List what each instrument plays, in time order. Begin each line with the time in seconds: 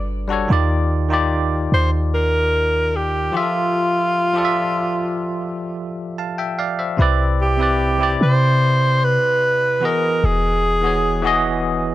Already playing: 808-style bass G1
0.28 tine electric piano G3 D4 F#4 A4
0.33 tine electric piano C#5
0.48 808-style bass D#2, tine electric piano D#3 D#4 F4 G4
0.53 tine electric piano D5
1.09 tine electric piano D#3 D#4 F4 G4
1.13 tine electric piano D5
1.72 808-style bass D#2, alto saxophone C5
2.14 alto saxophone A#4
2.96 alto saxophone G4
3.32 tine electric piano F3 F4 G4 G#4
3.37 alto saxophone F4, tine electric piano E5
3.42 tine electric piano A4
4.33 tine electric piano F3 F4 G4 A4
4.38 tine electric piano D5
4.45 tine electric piano E5
6.18 tine electric piano F5 A5
6.38 tine electric piano E5 G5
6.59 tine electric piano D5 F5
6.79 tine electric piano C5 E5
6.97 808-style bass C2, tine electric piano C3 C4 E4 B4
7.02 tine electric piano D5
7.41 alto saxophone G4
7.58 tine electric piano C3 C4 E4 B4
7.63 tine electric piano D5
7.98 tine electric piano C3 C4 E4 G4
8.03 tine electric piano D5
8.21 808-style bass C3, alto saxophone C5
9.04 alto saxophone B4
9.80 tine electric piano E3 B3 F#4 G#4
9.85 alto saxophone A#4, tine electric piano D#5
10.24 808-style bass E1, alto saxophone G#4
10.82 tine electric piano E3 B3 F#4 G#4
10.87 tine electric piano C#5
11.22 tine electric piano E3 B3 F#4 G#4
11.27 tine electric piano D#5